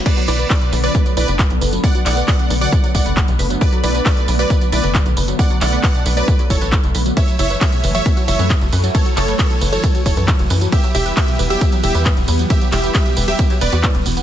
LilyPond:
<<
  \new Staff \with { instrumentName = "Supersaw synth" } { \time 4/4 \key b \minor \tempo 4 = 135 <b' d''>8 <b' d''>8 <b' d''>8 r16 <b' d''>8 r16 <b' d''>8. r8. | <d'' fis''>8 <d'' fis''>8 <d'' fis''>8 r16 <d'' fis''>8 r16 <d'' fis''>8. r8. | <b' d''>8 <b' d''>8 <b' d''>8 r16 <b' d''>8 r16 <b' d''>8. r8. | <d'' fis''>8 <d'' fis''>8 <d'' fis''>8 r16 <b' d''>8 r16 <a' cis''>8. r8. |
<cis'' e''>8 <cis'' e''>8 <cis'' e''>8 r16 <cis'' e''>8 r16 <cis'' e''>8. r8. | <a' cis''>8 <a' cis''>8 <a' cis''>8 r16 <a' cis''>8 r16 <a' cis''>8. r8. | <g' e''>8 <g' e''>8 <g' e''>8 r16 <g' e''>8 r16 <g' e''>8. r8. | <g' e''>8 <g' e''>8 <g' e''>8 r16 <g' e''>8 r16 <b' d''>8. r8. | }
  \new Staff \with { instrumentName = "Synth arpeggio sound" } { \time 4/4 \key b \minor b16 fis16 e'16 b'16 b'16 b,16 b'16 fis16 b16 fis16 e'16 b'16 b'16 b,16 b'16 fis16 | b16 fis16 e'16 b'16 b'16 b,16 b'16 fis16 b16 fis16 e'16 b'16 b'16 b,16 b'16 fis16 | b16 fis16 e'16 b'16 b'16 b,16 b'16 fis16 b16 fis16 e'16 b'16 b'16 b,16 b'16 fis16 | b16 fis16 e'16 b'16 b'16 b,16 b'16 fis16 b16 fis16 e'16 b'16 b'16 b,16 b'16 fis16 |
b16 fis16 e'16 b'16 b'16 b,16 b'16 fis16 b16 fis16 e'16 b'16 b'16 b,16 b'16 fis16 | b16 fis16 e'16 b'16 b'16 b,16 b'16 fis16 b16 fis16 e'16 b'16 b'16 b,16 b'16 fis16 | b16 fis16 e'16 b'16 b'16 b,16 b'16 fis16 b16 fis16 e'16 b'16 b'16 b,16 b'16 fis16 | b16 fis16 e'16 b'16 b'16 b,16 b'16 fis16 b16 fis16 b16 fis'16 b'16 b,16 b16 b16 | }
  \new Staff \with { instrumentName = "Analog synth pad" } { \clef bass \time 4/4 \key b \minor << { <a b>1~ | <a b>1~ | <a b>1~ | <a b>1 |
<fis a>1~ | <fis a>1 | <g b>1~ | <g b>1 | } \\ { d1~ | d1~ | d1~ | d1 |
e1~ | e1~ | e1~ | e1 | } >> }
  \new Staff \with { instrumentName = "Analog synth bass" } { \clef bass \time 4/4 \key b \minor r8 b,,8 r8 b,,8 r8 b,,16 fis,,8 b,,16 fis,,8 | r8 b,,8 r8 b,,8 r8 b,,16 fis,,8 b,,16 fis,,8 | r8 b,,8 r8 b,,8 r8 b,,16 fis,,8 b,,16 fis,,8 | r8 b,,8 r8 b,,8 r8 fis,,16 a,,8 fis,,16 b,,8 |
r8 fis,,8 r8 fis,,8 r8 fis,,16 fis,8 fis,,16 fis,8 | r8 fis,,8 r8 fis,,8 r8 fis,,16 fis,8 fis,,16 fis,8 | r8 e,,8 r8 e,,8 r8 e,,16 e,8 e,,16 e,8 | r8 e,,8 r8 e,,8 r8 e,,16 e,8 e,,16 e,,8 | }
  \new DrumStaff \with { instrumentName = "Drums" } \drummode { \time 4/4 <cymc hh bd tamb>16 <hh tamb>16 <hho tamb>16 <hh tamb>16 <hc hh bd tamb>16 <hh tamb>16 <hho tamb>16 <hh tamb>16 <hh bd tamb>16 <hh tamb>16 <hho tamb>16 <hh tamb>16 <hc hh bd tamb>16 <hh tamb>16 <hho tamb>16 <hh tamb>16 | <hh bd tamb>16 <hh tamb>16 <hc hho tamb>16 <hh tamb>16 <hc hh bd tamb>16 <hh tamb>16 <hho tamb>16 <hh tamb>16 <hh bd tamb>16 <hh tamb>16 <hho bd tamb>16 <hh tamb>16 <hc hh bd tamb>16 <hh tamb>16 <hho tamb>16 <hh tamb>16 | <hh bd tamb>16 <hh tamb>16 <hho tamb>16 <hh tamb>16 <hc hh bd tamb>16 <hh tamb>16 <hho tamb>16 <hh tamb>16 <hh bd tamb>16 <hh tamb>16 <hho tamb>16 <hh tamb>16 <hc hh bd tamb>16 <hh tamb>16 <hho tamb>16 <hh tamb>16 | <hh bd tamb>16 <hh tamb>16 <hc hho tamb>16 <hh tamb>16 <hc hh bd tamb>16 <hh tamb>16 <hho tamb>16 <hh tamb>16 <hh bd tamb>16 <hh tamb>16 <hho bd tamb>16 <hh tamb>16 <hc hh bd tamb>16 <hh tamb>16 <hho tamb>16 <hh tamb>16 |
<hh bd cymr tamb>16 <hh tamb>16 <hho tamb>16 <hh tamb>16 <hc hh bd cymr tamb>16 <hh tamb>16 <hho tamb>16 <hh tamb>16 <hh bd cymr tamb>16 <hh tamb>16 <hho tamb>16 <hh tamb>16 <hc hh bd cymr tamb>16 <hh tamb>16 <hho tamb>16 <hh tamb>16 | <hh bd cymr tamb>16 <hh tamb>16 <hc hho tamb>16 <hh tamb>16 <hc hh bd cymr tamb>16 <hh tamb>16 <hho tamb>16 <hh tamb>16 <hh bd cymr tamb>16 <hh tamb>16 <hho bd tamb>16 <hh tamb>16 <hc hh bd cymr tamb>16 <hh tamb>16 <hho tamb>16 <hh tamb>16 | <hh bd cymr tamb>16 <hh tamb>16 <hho tamb>16 <hh tamb>16 <hc hh bd cymr tamb>16 <hh tamb>16 <hho tamb>16 <hh tamb>16 <hh bd cymr tamb>16 <hh tamb>16 <hho tamb>16 <hh tamb>16 <hc hh bd cymr tamb>16 <hh tamb>16 <hho tamb>16 <hh tamb>16 | <hh bd cymr tamb>16 <hh tamb>16 <hc hho tamb>16 <hh tamb>16 <hc hh bd cymr tamb>16 <hh tamb>16 <hho tamb>16 <hh tamb>16 <hh bd cymr tamb>16 <hh tamb>16 <hho tamb>16 <hh tamb>16 <hc hh bd cymr tamb>16 <hh tamb>16 <hho tamb>16 <hh tamb>16 | }
>>